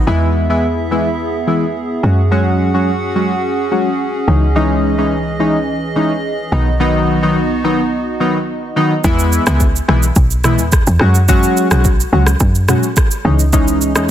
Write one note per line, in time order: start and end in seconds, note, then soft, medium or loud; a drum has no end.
0.07 1.99 E2 medium
0.07 0.46 E3 medium
0.07 0.46 G#3 medium
0.07 0.46 B3 medium
0.07 2.01 B3 medium
0.07 2.01 E4 medium
0.07 0.46 E4 loud
0.07 6.48 G#4 medium
0.07 2.01 E5 medium
0.49 0.66 E3 medium
0.49 0.66 G#3 medium
0.49 0.66 B3 medium
0.49 0.66 E4 medium
0.91 1.08 E3 medium
0.91 1.08 G#3 medium
0.91 1.08 B3 medium
0.91 1.09 E4 medium
1.47 1.64 E3 medium
1.47 1.64 G#3 medium
1.47 1.64 B3 medium
1.47 1.65 E4 medium
2.03 4.24 F#2 medium
2.03 2.20 F#3 medium
2.03 2.20 G#3 medium
2.03 6.48 C#4 medium
2.03 2.21 C#4 medium
2.03 4.25 F#4 medium
2.03 2.21 F#4 medium
2.03 4.25 F#5 medium
2.31 2.70 F#3 medium
2.31 2.70 G#3 medium
2.31 2.71 C#4 medium
2.31 2.71 F#4 loud
2.74 2.90 F#3 medium
2.74 2.90 G#3 medium
2.74 2.90 C#4 medium
2.74 2.91 F#4 medium
3.15 3.33 F#3 medium
3.15 3.33 G#3 medium
3.15 3.33 C#4 medium
3.15 3.33 F#4 medium
3.71 3.89 F#3 medium
3.71 3.89 G#3 medium
3.71 3.89 C#4 medium
3.71 3.89 F#4 medium
4.27 6.48 C#2 medium
4.27 4.45 E3 medium
4.27 6.50 E3 medium
4.27 4.45 G#3 medium
4.27 4.45 C#4 medium
4.27 4.45 D#4 medium
4.27 9.00 D#5 medium
4.55 4.95 E3 medium
4.55 4.95 G#3 medium
4.55 4.95 C#4 medium
4.55 4.95 D#4 loud
4.98 5.14 E3 medium
4.98 5.14 G#3 medium
4.98 5.15 C#4 medium
4.98 5.15 D#4 medium
5.39 5.57 E3 medium
5.39 5.57 G#3 medium
5.39 5.57 C#4 medium
5.39 5.57 D#4 medium
5.96 6.13 E3 medium
5.96 6.13 G#3 medium
5.96 6.13 C#4 medium
5.96 6.13 D#4 medium
6.52 8.72 B1 medium
6.52 6.69 D#3 medium
6.52 6.69 F#3 medium
6.52 9.02 B3 medium
6.52 6.69 B3 medium
6.52 9.02 D#4 medium
6.52 6.69 D#4 medium
6.52 9.02 F#4 medium
6.80 7.19 D#3 medium
6.80 7.19 F#3 medium
6.80 7.19 B3 medium
6.80 7.19 D#4 loud
7.22 7.39 D#3 medium
7.22 7.39 F#3 medium
7.22 7.39 B3 medium
7.22 7.39 D#4 medium
7.64 7.81 D#3 medium
7.64 7.81 F#3 medium
7.64 7.81 B3 medium
7.64 7.81 D#4 medium
8.20 8.37 D#3 medium
8.20 8.37 F#3 medium
8.20 8.38 B3 medium
8.20 8.38 D#4 medium
8.76 8.93 D#3 medium
8.76 8.93 F#3 medium
8.76 8.94 B3 medium
8.76 8.94 D#4 medium
9.04 9.39 E2 loud
9.04 9.43 E3 loud
9.04 9.43 G#3 medium
9.04 9.44 B3 medium
9.04 9.44 E4 loud
9.04 kick loud
9.04 shaker medium
9.19 shaker medium
9.33 shaker medium
9.47 9.81 C#2 loud
9.47 9.63 E3 medium
9.47 9.63 G#3 medium
9.47 9.63 B3 medium
9.47 9.63 E4 medium
9.47 cross-stick loud
9.47 shaker medium
9.60 kick medium
9.60 shaker medium
9.76 shaker soft
9.88 10.11 B1 medium
9.88 10.05 E3 medium
9.88 10.06 G#3 medium
9.88 10.06 B3 medium
9.88 10.06 E4 medium
9.88 cross-stick medium
10.03 shaker medium
10.16 10.60 B1 loud
10.16 kick loud
10.16 shaker medium
10.31 shaker medium
10.44 10.62 E3 medium
10.44 10.62 G#3 medium
10.44 10.62 B3 medium
10.44 10.62 E4 medium
10.44 cross-stick loud
10.44 mid tom loud
10.44 shaker medium
10.59 10.82 E2 loud
10.59 shaker medium
10.72 kick loud
10.72 cross-stick loud
10.72 shaker medium
10.87 10.98 E2 medium
10.87 shaker medium
10.99 11.46 F#2 loud
10.99 11.18 F#3 medium
10.99 11.18 G#3 medium
10.99 11.18 C#4 medium
10.99 11.18 F#4 medium
10.99 cross-stick medium
11.15 shaker medium
11.28 11.68 F#3 loud
11.28 11.68 G#3 medium
11.28 11.68 C#4 medium
11.28 11.68 F#4 loud
11.28 kick loud
11.28 shaker medium
11.43 shaker medium
11.57 shaker medium
11.71 12.05 B1 medium
11.71 11.87 F#3 medium
11.71 11.87 G#3 medium
11.71 11.87 C#4 medium
11.71 11.88 F#4 medium
11.71 cross-stick loud
11.71 shaker medium
11.85 kick loud
11.85 shaker medium
12.00 shaker medium
12.12 12.35 C#2 loud
12.12 12.30 F#3 medium
12.12 12.30 G#3 medium
12.12 12.30 C#4 medium
12.12 12.30 F#4 medium
12.27 cross-stick loud
12.27 shaker medium
12.40 12.75 F#2 loud
12.40 kick loud
12.40 shaker medium
12.55 shaker medium
12.68 12.86 F#3 medium
12.68 12.86 G#3 medium
12.68 12.86 C#4 medium
12.68 12.86 F#4 medium
12.68 cross-stick loud
12.68 mid tom medium
12.68 shaker medium
12.83 shaker soft
12.97 kick loud
12.97 cross-stick loud
12.97 shaker medium
13.11 shaker medium
13.24 13.97 C#2 loud
13.24 13.42 E3 medium
13.24 13.42 G#3 medium
13.24 13.42 C#4 medium
13.24 13.42 D#4 medium
13.39 shaker medium
13.53 13.92 E3 loud
13.53 13.92 G#3 loud
13.53 13.92 C#4 medium
13.53 13.92 D#4 loud
13.53 kick loud
13.53 shaker medium
13.68 shaker medium
13.81 shaker medium
13.95 14.11 E2 loud
13.95 14.11 E3 medium
13.95 14.11 G#3 medium
13.95 14.11 C#4 medium
13.95 14.11 D#4 medium
13.95 cross-stick loud
13.95 shaker medium